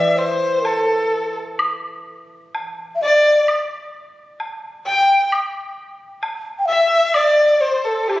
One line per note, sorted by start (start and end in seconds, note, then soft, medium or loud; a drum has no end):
0.00 2.54 E3 medium
0.00 0.10 D5 medium
0.00 0.20 E5 medium
0.10 0.18 D5 medium
0.16 0.65 C5 medium
0.16 0.68 C5 medium
0.63 1.34 A4 medium
0.63 1.36 A4 medium
0.63 low woodblock soft
1.59 high woodblock medium
2.55 low woodblock soft
2.95 3.03 E5 medium
3.02 3.48 D5 loud
3.02 3.46 D5 medium
3.48 high woodblock medium
4.40 low woodblock soft
4.86 5.29 G5 loud
4.86 5.29 G5 medium
5.32 high woodblock medium
6.23 low woodblock soft
6.59 6.67 G5 medium
6.65 7.16 E5 loud
6.65 7.17 E5 medium
7.14 7.62 D5 medium
7.14 7.64 D5 medium
7.14 high woodblock medium
7.61 7.88 C5 medium
7.61 7.87 C5 medium
7.85 8.09 A4 medium
7.85 8.11 A4 medium
8.08 8.18 G4 medium
8.08 8.20 G4 medium
8.08 low woodblock soft
8.16 8.20 E4 medium